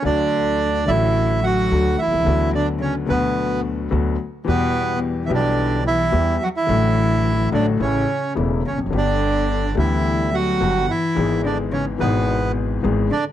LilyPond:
<<
  \new Staff \with { instrumentName = "Bandoneon" } { \time 4/4 \key d \major \tempo 4 = 108 <d' d''>4. <e' e''>4 <fis' fis''>4 <e' e''>8~ | <e' e''>8 <d' d''>8 <cis' cis''>8 <b b'>4 r4. | <b b'>4 r16. e''32 <d' d''>4 <e' e''>4 <fis' fis''>16 <e' e''>16~ | <e' e''>4. <d' d''>8 <cis' cis''>4 r8 <cis' cis''>8 |
<d' d''>4. <e' e''>4 <fis' fis''>4 <e' e''>8~ | <e' e''>8 <d' d''>8 <cis' cis''>8 <b b'>4 r4 <d' d''>8 | }
  \new Staff \with { instrumentName = "Grand piano" } { \clef bass \time 4/4 \key d \major <d, d fis a fis'>4. <a,, a, d fis a fis'>4. <d, d fis a fis'>8 r32 b,,32 c,32 cis,32 | <d, d fis b fis'>4. <d, d fis b fis'>4. <d, d fis b fis'>8 r8 | <e, e g b g'>4. <b,, b, e g b g'>4. <e, e g b g'>8 r8 | <a,, a, d fis a fis'>4. <a,, a, d fis a fis'>8 <a,, a, cis e a e'>8 r8 <e,, e, cis e a e'>8 r32 e,32 f,32 fis,32 |
<g,, g, d g b g'>4. <d, d g b g'>4. <g,, g, d g b g'>8 r8 | <gis,, gis, e gis b gis'>4. <gis,, gis, e gis b gis'>4. <gis,, gis, e gis b gis'>8 r8 | }
  \new Staff \with { instrumentName = "Cello" } { \clef bass \time 4/4 \key d \major d4. e4 fis4 e8~ | e8 d8 cis8 b,4 r4. | b,4 r16. e32 d4 e4 fis16 e16~ | e4. d8 cis4 r8 cis8 |
d4. e4 fis4 e8~ | e8 d8 cis8 b,4 r4 d8 | }
  \new Staff \with { instrumentName = "Upright bass" } { \clef bass \time 4/4 \key d \major d,4~ d,16. r32 a,,4~ a,,16. r32 d,16. r16 b,,32 c,32 cis,32 | d,4~ d,16. r32 d,4~ d,16. r32 d,16. r8 r32 | e,4~ e,16. r32 b,,4~ b,,16. r32 e,16. r8 r32 | a,,4~ a,,16. r32 a,,16. r32 a,,16. r8 r32 e,,16. r16 e,,32 f,,32 fis,,32 |
g,,4~ g,,16. r32 d,4~ d,16. r32 g,,16. r8 r32 | gis,,4~ gis,,16. r32 gis,,4~ gis,,16. r32 gis,,16. r8 r32 | }
>>